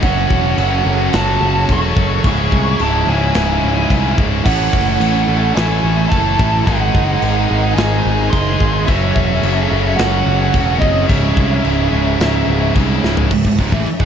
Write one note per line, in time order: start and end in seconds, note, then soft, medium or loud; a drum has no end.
0.01 0.26 F#1 loud
0.01 0.56 F#2 loud
0.01 0.56 C#3 loud
0.01 0.57 F#3 loud
0.01 2.23 F#3 medium
0.01 4.42 C#4 medium
0.01 0.11 C#4 medium
0.01 0.12 F#4 loud
0.01 2.23 A4 medium
0.01 1.15 F#5 medium
0.01 kick loud
0.01 china medium
0.12 0.18 C#4 medium
0.12 0.19 F#4 medium
0.18 0.26 C#4 medium
0.18 0.27 F#4 medium
0.27 0.53 E1 medium
0.27 0.34 C#4 medium
0.27 0.35 F#4 medium
0.27 kick medium
0.34 0.41 C#4 medium
0.34 0.42 F#4 medium
0.42 0.49 C#4 medium
0.42 0.49 F#4 medium
0.49 0.57 C#4 medium
0.49 0.57 F#4 medium
0.57 0.81 F#1 medium
0.57 0.85 F#2 medium
0.57 0.85 C#3 medium
0.57 0.86 F#3 loud
0.57 0.64 C#4 medium
0.57 0.65 F#4 medium
0.57 china medium
0.64 0.71 C#4 medium
0.64 0.73 F#4 medium
0.72 0.79 C#4 medium
0.72 0.80 F#4 medium
0.80 0.87 C#4 medium
0.80 0.88 F#4 medium
0.85 1.08 F#1 medium
0.85 1.11 F#2 medium
0.85 1.11 C#3 medium
0.85 1.12 F#3 medium
0.85 0.95 C#4 medium
0.85 0.95 F#4 medium
0.95 1.02 C#4 medium
0.95 1.02 F#4 medium
1.03 1.10 C#4 medium
1.03 1.09 F#4 medium
1.10 1.36 F#1 medium
1.10 1.68 F#2 loud
1.10 1.69 C#3 loud
1.10 1.69 F#3 loud
1.10 1.18 C#4 medium
1.10 1.17 F#4 medium
1.10 china medium
1.14 1.71 A5 loud
1.14 snare loud
1.18 1.26 C#4 medium
1.18 1.26 F#4 medium
1.26 1.33 C#4 medium
1.26 1.33 F#4 medium
1.33 1.40 C#4 medium
1.33 1.41 F#4 medium
1.41 1.64 F#1 loud
1.41 1.48 C#4 medium
1.41 1.49 F#4 medium
1.48 1.56 C#4 medium
1.48 1.57 F#4 medium
1.56 1.63 C#4 medium
1.56 1.65 F#4 medium
1.64 1.71 C#4 medium
1.64 1.71 F#4 medium
1.69 1.92 E1 loud
1.69 1.96 F#2 medium
1.69 1.96 C#3 medium
1.69 1.98 F#3 medium
1.69 1.78 C#4 medium
1.69 1.79 F#4 medium
1.69 2.22 A4 loud
1.69 2.22 C#6 loud
1.69 kick medium
1.69 china medium
1.78 1.86 C#4 medium
1.78 1.87 F#4 medium
1.86 1.94 C#4 medium
1.86 1.94 F#4 medium
1.94 2.19 F#1 medium
1.94 2.23 F#2 medium
1.94 2.23 C#3 loud
1.94 2.01 C#4 medium
1.94 2.02 F#4 medium
1.94 kick medium
1.99 2.24 F#3 medium
1.99 2.09 C#4 medium
1.99 2.10 F#4 medium
2.09 2.16 C#4 medium
2.09 2.18 F#4 medium
2.16 2.24 C#4 medium
2.16 2.24 F#4 medium
2.24 2.47 C#1 loud
2.24 2.79 C#2 loud
2.24 2.79 G#2 loud
2.24 2.80 C#3 loud
2.24 2.31 G#3 medium
2.24 2.31 E4 loud
2.24 4.43 D#5 medium
2.24 4.43 E5 medium
2.24 2.83 C#6 loud
2.24 kick loud
2.24 china medium
2.29 2.38 G#3 medium
2.29 2.39 E4 medium
2.29 2.78 G#4 medium
2.38 2.46 G#3 medium
2.38 2.46 E4 medium
2.47 2.54 G#3 medium
2.47 2.54 E4 medium
2.52 2.75 C2 medium
2.52 2.61 G#3 medium
2.52 2.62 E4 medium
2.52 kick medium
2.62 2.69 G#3 medium
2.62 2.69 E4 medium
2.70 2.77 G#3 medium
2.70 2.77 E4 medium
2.77 3.03 C#1 medium
2.77 3.06 C#2 medium
2.77 3.07 G#2 medium
2.77 2.85 G#3 medium
2.77 2.84 E4 medium
2.77 china medium
2.81 3.07 C#3 loud
2.81 2.92 E4 medium
2.81 3.09 A5 medium
2.85 2.91 G#3 medium
2.92 2.99 G#3 medium
2.92 2.99 E4 medium
3.00 3.07 G#3 medium
3.00 3.07 E4 medium
3.07 3.30 C#1 medium
3.07 3.34 C#2 medium
3.07 3.35 G#2 medium
3.07 3.35 C#3 loud
3.07 3.15 G#3 medium
3.07 3.16 E4 medium
3.07 4.15 G#5 medium
3.16 3.23 G#3 medium
3.16 3.21 E4 medium
3.21 3.30 G#3 medium
3.21 3.29 E4 medium
3.30 3.37 G#3 medium
3.30 3.37 E4 medium
3.34 3.58 C#1 medium
3.34 3.89 C#2 medium
3.34 3.90 G#2 loud
3.34 3.90 C#3 loud
3.34 3.45 G#3 medium
3.34 3.45 E4 medium
3.34 snare loud
3.34 china medium
3.46 3.53 G#3 medium
3.46 3.52 E4 medium
3.53 3.61 G#3 medium
3.53 3.60 E4 medium
3.61 3.86 C#1 loud
3.61 3.68 G#3 medium
3.61 3.68 E4 loud
3.68 3.76 G#3 medium
3.68 3.76 E4 medium
3.76 3.84 G#3 medium
3.76 3.82 E4 medium
3.83 3.91 G#3 medium
3.83 3.90 E4 medium
3.90 4.13 C2 medium
3.90 4.17 C#2 medium
3.90 4.18 G#2 medium
3.90 4.18 C#3 medium
3.90 3.99 G#3 medium
3.90 3.98 E4 medium
3.90 kick medium
3.90 china medium
3.99 4.07 G#3 medium
3.99 4.05 E4 medium
4.06 4.14 G#3 medium
4.06 4.13 E4 medium
4.14 4.22 G#3 medium
4.14 4.21 E4 medium
4.18 4.41 C#1 medium
4.18 4.44 C#2 medium
4.18 4.44 G#2 medium
4.18 4.45 C#3 medium
4.18 kick medium
4.22 4.29 G#3 medium
4.22 4.28 E4 medium
4.28 4.37 G#3 medium
4.28 4.36 E4 medium
4.37 4.45 G#3 medium
4.37 4.45 E4 medium
4.45 4.68 A1 loud
4.45 5.00 A2 loud
4.45 5.01 E3 loud
4.45 6.65 A3 medium
4.45 5.01 A3 loud
4.45 5.52 C#4 medium
4.45 6.64 E4 medium
4.45 4.53 E4 medium
4.45 6.64 A4 medium
4.45 4.54 A4 medium
4.45 6.65 C#5 medium
4.45 5.52 F#5 medium
4.45 kick loud
4.45 crash loud
4.45 china medium
4.53 4.60 E4 medium
4.53 4.61 A4 medium
4.60 4.68 E4 medium
4.60 4.69 A4 medium
4.68 4.76 E4 medium
4.68 4.77 A4 medium
4.73 4.96 F#1 medium
4.73 4.83 E4 medium
4.73 kick medium
4.78 4.83 A4 medium
4.83 4.91 E4 medium
4.83 4.91 A4 medium
4.91 4.98 E4 medium
4.91 4.99 A4 medium
4.99 5.23 A1 loud
4.99 5.28 A2 medium
4.99 5.28 E3 medium
4.99 5.29 A3 loud
4.99 5.06 E4 medium
4.99 5.07 A4 medium
4.99 china medium
5.06 5.13 E4 medium
5.06 5.15 A4 medium
5.14 5.21 E4 medium
5.14 5.22 A4 medium
5.22 5.28 E4 medium
5.22 5.29 A4 medium
5.28 5.51 A1 loud
5.28 5.55 A2 medium
5.28 5.55 E3 medium
5.28 5.56 A3 medium
5.28 5.36 E4 medium
5.28 5.37 A4 medium
5.37 5.44 E4 medium
5.37 5.45 A4 medium
5.45 5.51 E4 medium
5.45 5.52 A4 medium
5.52 5.59 E4 medium
5.52 5.60 A4 medium
5.52 6.07 G#5 medium
5.56 5.79 A1 medium
5.56 6.10 A2 loud
5.56 6.12 E3 loud
5.56 6.12 A3 loud
5.56 snare loud
5.56 china medium
5.61 5.67 E4 medium
5.61 5.67 A4 medium
5.67 5.75 E4 medium
5.67 5.75 A4 medium
5.75 5.83 E4 medium
5.75 5.83 A4 medium
5.83 6.06 A1 loud
5.83 5.91 E4 medium
5.83 5.90 A4 medium
5.90 5.97 E4 medium
5.90 5.98 A4 medium
5.97 6.05 E4 medium
5.97 6.06 A4 medium
6.06 6.14 E4 medium
6.06 6.14 A4 medium
6.06 6.64 A5 loud
6.12 6.34 F#1 medium
6.12 6.38 A2 medium
6.12 6.38 E3 medium
6.12 6.39 A3 medium
6.12 6.20 E4 medium
6.12 6.22 A4 medium
6.12 kick medium
6.12 china medium
6.21 6.27 E4 medium
6.21 6.29 A4 medium
6.27 6.35 E4 medium
6.27 6.36 A4 medium
6.36 6.62 A1 medium
6.36 6.65 A2 medium
6.36 6.65 E3 medium
6.36 6.65 A3 loud
6.36 6.44 E4 medium
6.36 6.44 A4 medium
6.36 kick loud
6.44 6.52 E4 medium
6.44 6.51 A4 medium
6.51 6.60 E4 medium
6.51 6.59 A4 medium
6.60 6.66 E4 medium
6.60 6.67 A4 medium
6.64 6.90 G#1 loud
6.64 7.20 G#2 medium
6.64 7.20 D#3 loud
6.64 7.21 G#3 loud
6.64 8.86 G#3 medium
6.64 6.74 D#4 medium
6.64 8.86 D#4 medium
6.64 6.75 G#4 loud
6.64 8.86 G#4 medium
6.64 8.86 C5 medium
6.64 7.73 F#5 loud
6.64 kick loud
6.64 china medium
6.74 6.81 D#4 medium
6.74 6.82 G#4 medium
6.82 6.89 D#4 medium
6.82 6.90 G#4 medium
6.89 6.97 D#4 medium
6.89 6.98 G#4 medium
6.94 7.17 F#1 medium
6.94 7.04 D#4 medium
6.94 kick medium
6.99 7.06 G#4 medium
7.04 7.11 D#4 medium
7.04 7.13 G#4 medium
7.12 7.19 D#4 medium
7.12 7.20 G#4 medium
7.19 7.45 G#1 medium
7.19 7.47 G#2 medium
7.19 7.48 D#3 medium
7.19 7.49 G#3 medium
7.19 7.27 D#4 medium
7.19 7.28 G#4 medium
7.19 china medium
7.28 7.35 D#4 medium
7.28 7.36 G#4 medium
7.36 7.43 D#4 medium
7.36 7.43 G#4 medium
7.43 7.50 D#4 medium
7.43 7.51 G#4 medium
7.49 7.73 G#1 medium
7.49 7.76 G#2 loud
7.49 7.76 D#3 medium
7.49 7.77 G#3 loud
7.49 7.58 D#4 medium
7.49 7.59 G#4 medium
7.58 7.65 D#4 medium
7.58 7.66 G#4 medium
7.66 7.73 D#4 medium
7.66 7.74 G#4 medium
7.74 8.00 G#1 loud
7.74 8.30 G#2 medium
7.74 8.30 D#3 loud
7.74 8.31 G#3 loud
7.74 7.81 D#4 medium
7.74 7.82 G#4 medium
7.74 8.33 G#5 loud
7.74 china medium
7.78 7.87 D#4 medium
7.78 7.89 G#4 medium
7.78 snare loud
7.87 7.95 D#4 medium
7.87 7.97 G#4 medium
7.95 8.03 D#4 medium
7.95 8.05 G#4 medium
8.04 8.28 G#1 loud
8.04 8.11 D#4 medium
8.04 8.11 G#4 medium
8.12 8.18 D#4 medium
8.12 8.19 G#4 medium
8.19 8.26 D#4 medium
8.19 8.27 G#4 medium
8.27 8.34 D#4 medium
8.27 8.33 G#4 medium
8.27 8.83 C6 loud
8.31 8.56 F#1 loud
8.31 8.60 G#2 medium
8.31 8.61 D#3 medium
8.31 8.61 G#3 loud
8.31 8.42 D#4 medium
8.31 8.41 G#4 medium
8.31 kick medium
8.31 china medium
8.42 8.50 D#4 medium
8.42 8.50 G#4 medium
8.50 8.57 D#4 medium
8.50 8.58 G#4 medium
8.58 8.83 G#1 medium
8.58 8.87 G#2 medium
8.58 8.87 D#3 medium
8.58 8.64 D#4 medium
8.58 8.65 G#4 medium
8.58 kick medium
8.62 8.87 G#3 loud
8.62 8.73 D#4 medium
8.62 8.73 G#4 medium
8.73 8.79 D#4 medium
8.73 8.80 G#4 medium
8.79 8.87 D#4 medium
8.79 8.88 G#4 medium
8.86 9.11 F#1 medium
8.86 9.43 F#2 loud
8.86 9.43 C#3 loud
8.86 11.07 F#3 medium
8.86 8.96 C#4 medium
8.86 13.27 C#4 medium
8.86 8.97 F#4 loud
8.86 11.07 G#4 medium
8.86 11.08 A4 medium
8.86 10.01 E5 loud
8.86 kick loud
8.86 china medium
8.90 9.43 F#3 loud
8.96 9.03 C#4 medium
8.96 9.04 F#4 medium
9.04 9.11 C#4 medium
9.04 9.12 F#4 medium
9.12 9.18 C#4 medium
9.12 9.20 F#4 medium
9.16 9.39 E1 medium
9.16 9.26 C#4 medium
9.16 kick medium
9.21 9.27 F#4 medium
9.27 9.35 C#4 medium
9.27 9.35 F#4 medium
9.35 9.41 C#4 medium
9.35 9.43 F#4 medium
9.42 9.66 F#1 loud
9.42 9.71 F#2 medium
9.42 9.72 C#3 medium
9.42 9.71 F#3 medium
9.42 9.49 C#4 medium
9.42 9.50 F#4 medium
9.42 china medium
9.50 9.57 C#4 medium
9.50 9.57 F#4 medium
9.58 9.65 C#4 medium
9.58 9.65 F#4 medium
9.65 9.72 C#4 medium
9.65 9.72 F#4 medium
9.72 9.94 F#1 medium
9.72 9.98 F#2 medium
9.72 9.99 C#3 medium
9.72 10.00 F#3 medium
9.72 9.79 C#4 medium
9.72 9.80 F#4 medium
9.80 9.87 C#4 medium
9.80 9.88 F#4 medium
9.87 9.94 C#4 medium
9.87 9.96 F#4 medium
9.95 10.02 C#4 medium
9.95 10.03 F#4 loud
9.95 10.83 F#5 loud
9.99 10.22 F#1 loud
9.99 10.54 F#2 medium
9.99 10.54 C#3 loud
9.99 10.55 F#3 loud
9.99 snare loud
9.99 china medium
10.03 10.10 C#4 medium
10.03 10.11 F#4 medium
10.11 10.18 C#4 medium
10.11 10.19 F#4 medium
10.18 10.25 C#4 medium
10.18 10.26 F#4 medium
10.26 10.49 F#1 medium
10.26 10.33 C#4 medium
10.26 10.34 F#4 medium
10.34 10.41 C#4 medium
10.34 10.41 F#4 medium
10.41 10.48 C#4 medium
10.41 10.49 F#4 medium
10.49 10.56 C#4 medium
10.49 10.57 F#4 medium
10.54 10.77 E1 medium
10.54 10.81 F#2 medium
10.54 10.82 C#3 medium
10.54 10.82 F#3 medium
10.54 10.63 C#4 medium
10.54 10.63 F#4 medium
10.54 kick medium
10.54 china medium
10.64 10.71 C#4 medium
10.64 10.71 F#4 medium
10.72 10.79 C#4 medium
10.72 10.80 F#4 medium
10.79 11.05 F#1 medium
10.79 11.08 F#2 medium
10.79 11.06 C4 medium
10.79 10.86 C#4 medium
10.79 10.88 F#4 medium
10.79 11.06 D#5 medium
10.79 kick loud
10.83 11.08 C#3 medium
10.83 11.08 F#3 loud
10.83 10.93 C#4 medium
10.88 10.95 F#4 medium
10.93 11.01 C#4 medium
10.93 11.01 F#4 medium
11.02 11.09 C#4 medium
11.02 11.09 F#4 medium
11.07 11.32 C#1 loud
11.07 11.65 C#2 loud
11.07 11.65 G#2 loud
11.07 11.17 G#3 medium
11.07 12.71 C#4 medium
11.07 13.29 G#4 medium
11.07 13.28 C#5 medium
11.07 12.70 E5 medium
11.07 13.29 E5 medium
11.07 kick loud
11.07 china medium
11.11 11.66 C#3 loud
11.11 11.18 E4 medium
11.17 11.25 G#3 medium
11.17 11.24 E4 medium
11.24 11.33 G#3 medium
11.24 11.32 E4 medium
11.33 11.60 C2 medium
11.33 11.40 G#3 medium
11.33 11.40 E4 medium
11.37 11.47 G#3 medium
11.37 11.48 E4 medium
11.37 kick medium
11.47 11.55 G#3 medium
11.47 11.56 E4 medium
11.56 11.62 G#3 medium
11.56 11.63 E4 medium
11.62 11.88 C#1 loud
11.62 11.91 C#2 medium
11.62 11.70 G#3 medium
11.62 11.71 E4 medium
11.62 china medium
11.66 11.91 G#2 loud
11.66 11.92 C#3 medium
11.71 11.78 G#3 medium
11.71 11.79 E4 medium
11.78 11.86 G#3 medium
11.78 11.87 E4 medium
11.86 11.93 G#3 medium
11.86 11.94 E4 medium
11.93 12.16 C#1 medium
11.93 12.20 C#2 medium
11.93 12.20 G#2 medium
11.93 12.21 C#3 medium
11.93 12.01 G#3 medium
11.93 12.02 E4 medium
12.01 12.09 G#3 medium
12.01 12.10 E4 medium
12.10 12.16 G#3 medium
12.10 12.17 E4 medium
12.16 12.43 C#1 medium
12.16 12.24 G#3 medium
12.16 12.25 E4 medium
12.20 12.75 C#2 loud
12.20 12.76 G#2 loud
12.20 12.76 C#3 loud
12.20 snare loud
12.20 china medium
12.25 12.31 G#3 medium
12.25 12.32 E4 medium
12.32 12.39 G#3 medium
12.32 12.39 E4 medium
12.39 12.46 G#3 medium
12.39 12.47 E4 medium
12.47 12.70 C#1 medium
12.47 12.54 G#3 medium
12.47 12.55 E4 medium
12.54 12.62 G#3 medium
12.54 12.62 E4 medium
12.62 12.70 G#3 medium
12.62 12.70 E4 medium
12.70 12.76 G#3 medium
12.70 12.78 E4 medium
12.75 12.98 C2 medium
12.75 13.02 C#2 medium
12.75 13.03 G#2 medium
12.75 13.03 C#3 medium
12.75 12.84 G#3 medium
12.75 12.85 E4 medium
12.75 kick medium
12.75 china medium
12.85 12.93 G#3 medium
12.85 12.92 E4 medium
12.93 12.99 G#3 medium
12.93 13.00 E4 medium
12.99 13.07 G#3 medium
12.99 13.08 E4 medium
13.04 13.26 C#1 medium
13.04 13.29 C#2 medium
13.04 13.30 G#2 loud
13.04 13.30 C#3 medium
13.04 snare medium
13.09 13.14 G#3 medium
13.09 13.17 E4 medium
13.14 13.22 G#3 medium
13.14 13.23 E4 medium
13.14 floor tom loud
13.23 13.31 G#3 medium
13.23 13.31 E4 medium
13.31 13.44 C#1 medium
13.31 13.45 C#2 medium
13.31 13.45 G#2 medium
13.31 13.46 G#2 medium
13.31 14.05 C#3 medium
13.31 14.05 G#3 medium
13.31 14.05 D#4 medium
13.31 14.05 E4 loud
13.31 kick loud
13.31 crash loud
13.31 crash medium
13.45 13.57 C#1 medium
13.45 13.58 C#2 medium
13.45 13.59 C#2 medium
13.45 13.59 G#2 medium
13.45 13.60 G#2 medium
13.45 kick medium
13.58 13.71 C#1 medium
13.58 13.72 C#2 loud
13.58 13.72 C#2 medium
13.58 13.72 G#2 loud
13.58 13.73 G#2 medium
13.58 kick medium
13.72 13.85 A1 loud
13.72 13.85 A2 loud
13.72 13.86 A2 medium
13.72 13.86 E3 loud
13.72 13.87 E3 loud
13.72 kick medium
13.86 muted distorted electric guitar stroke medium
13.86 muted picked electric bass stroke soft
13.86 crash medium
14.00 14.05 C#1 medium
14.00 14.05 C#2 loud
14.00 14.05 C#2 medium
14.00 14.05 G#2 loud
14.00 14.05 G#2 medium
14.00 kick loud